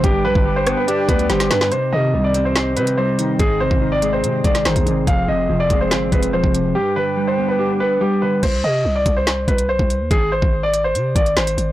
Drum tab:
CC |----------------|----------------|----------------|----------------|
HH |x-----x-x-xxxxx-|x-----x-x-xx--x-|x-----x-x-xxxxx-|x-----x-x-xx--x-|
SD |------r-----oooo|--------o-------|-----------oo---|--------o-------|
BD |o--o------o-----|----------------|o--o------o--o--|o-----o---o--o--|

CC |----------------|x---------------|----------------|
HH |----------------|x-----x-x-xx--x-|x-----x-x-xxxxx-|
SD |----------------|--------o-------|------------o---|
BD |----------------|o-----o---o--o--|o--o------o-----|